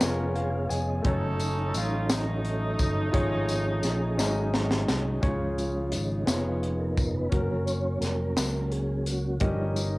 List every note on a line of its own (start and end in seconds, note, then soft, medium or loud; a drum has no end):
0.00 0.66 F1 medium
0.00 1.05 F3 medium
0.00 1.05 B3 medium
0.00 1.02 C#4 medium
0.00 0.32 D#4 medium
0.00 0.32 F4 medium
0.00 1.05 F4 medium
0.00 1.05 G#4 medium
0.00 0.36 A#4 medium
0.00 1.05 C#5 medium
0.00 snare loud
0.00 closed hi-hat medium
0.00 tambourine medium
0.06 1.08 G#4 medium
0.35 0.68 F5 medium
0.35 0.51 G#5 medium
0.35 closed hi-hat soft
0.51 0.68 F5 medium
0.69 1.02 F1 medium
0.69 1.02 D#5 medium
0.69 1.02 G#5 medium
0.69 closed hi-hat soft
0.69 tambourine soft
1.02 1.70 F#1 loud
1.02 3.09 F#3 medium
1.02 3.10 F#3 medium
1.02 3.08 A3 medium
1.02 3.09 C#4 medium
1.02 3.09 D#4 medium
1.02 3.10 D#4 medium
1.02 3.09 A4 medium
1.02 kick loud
1.02 closed hi-hat medium
1.06 2.06 C#4 medium
1.06 2.06 D#4 medium
1.06 1.72 A4 medium
1.06 3.11 C#5 medium
1.40 closed hi-hat soft
1.40 tambourine soft
1.74 2.75 A1 medium
1.74 2.11 F4 medium
1.74 closed hi-hat medium
1.74 tambourine medium
2.09 4.85 A3 medium
2.09 4.89 D#4 medium
2.09 snare loud
2.09 closed hi-hat medium
2.09 tambourine medium
2.45 closed hi-hat soft
2.79 3.11 G1 medium
2.79 kick medium
2.79 closed hi-hat soft
2.79 tambourine medium
3.12 3.80 G#1 loud
3.12 4.18 F3 medium
3.12 4.16 C#4 medium
3.12 4.17 F4 medium
3.12 3.20 G4 medium
3.12 4.17 G#4 medium
3.12 4.19 C#5 medium
3.12 kick loud
3.12 closed hi-hat medium
3.19 4.17 G#4 medium
3.49 closed hi-hat soft
3.49 tambourine soft
3.83 4.15 A#1 medium
3.83 snare soft
3.83 closed hi-hat medium
3.83 tambourine medium
4.17 4.84 G#1 medium
4.17 5.19 G#2 medium
4.17 5.23 F#3 medium
4.17 5.22 C#4 medium
4.17 5.23 D#4 medium
4.17 5.19 D#4 medium
4.17 5.23 F#4 medium
4.17 5.23 G#4 medium
4.17 5.20 G#4 medium
4.17 5.24 D#5 medium
4.17 snare medium
4.17 tambourine medium
4.54 snare medium
4.71 snare medium
4.88 5.20 C2 medium
4.88 snare medium
4.88 tambourine soft
5.21 5.94 C#2 medium
5.21 6.23 C#3 medium
5.21 6.24 F3 soft
5.21 6.24 G#3 soft
5.21 6.24 C#4 medium
5.21 5.28 D#4 medium
5.21 6.26 G#4 medium
5.21 6.26 C#5 medium
5.21 kick loud
5.21 closed hi-hat medium
5.27 6.25 F4 medium
5.58 5.84 F4 medium
5.58 closed hi-hat soft
5.58 tambourine soft
5.86 5.93 F4 medium
5.92 6.25 G#1 medium
5.92 6.28 D#4 medium
5.92 closed hi-hat medium
5.92 tambourine soft
6.25 7.28 F1 medium
6.25 7.28 F3 soft
6.25 7.31 B3 soft
6.25 7.28 B3 soft
6.25 7.28 C#4 soft
6.25 7.29 D#4 medium
6.25 7.32 F4 soft
6.25 6.45 F4 medium
6.25 7.32 G#4 soft
6.25 7.32 C#5 medium
6.25 snare loud
6.25 closed hi-hat medium
6.25 tambourine medium
6.47 6.64 F4 medium
6.63 6.81 G#4 medium
6.63 closed hi-hat soft
6.79 6.96 A#4 medium
6.97 7.10 A#4 medium
6.97 kick medium
6.97 closed hi-hat medium
6.97 tambourine soft
7.11 7.15 A#4 medium
7.15 7.33 B4 medium
7.29 7.98 F#1 medium
7.29 9.37 F#3 medium
7.29 9.37 A#3 soft
7.29 9.36 C#4 medium
7.29 9.38 C#4 medium
7.29 9.37 F#4 medium
7.29 9.38 A#4 medium
7.29 kick loud
7.29 closed hi-hat medium
7.34 7.65 A#4 medium
7.66 7.99 C#5 medium
7.66 closed hi-hat soft
7.66 tambourine soft
8.01 8.33 F1 medium
8.01 8.35 A#4 medium
8.01 snare soft
8.01 closed hi-hat medium
8.01 tambourine soft
8.36 9.37 C#2 medium
8.36 8.72 A#4 medium
8.36 snare loud
8.36 closed hi-hat medium
8.36 tambourine medium
8.71 9.07 G#4 medium
8.71 closed hi-hat soft
9.06 9.42 F#4 medium
9.06 closed hi-hat medium
9.06 tambourine soft
9.40 9.98 G1 medium
9.40 9.98 G2 medium
9.40 9.87 F3 medium
9.40 9.87 G3 medium
9.40 9.98 C#4 medium
9.40 9.88 C#4 medium
9.40 9.98 D#4 medium
9.40 9.98 G4 medium
9.40 9.98 A#4 medium
9.40 9.98 D#5 medium
9.40 kick loud
9.40 closed hi-hat medium
9.76 closed hi-hat soft
9.76 tambourine medium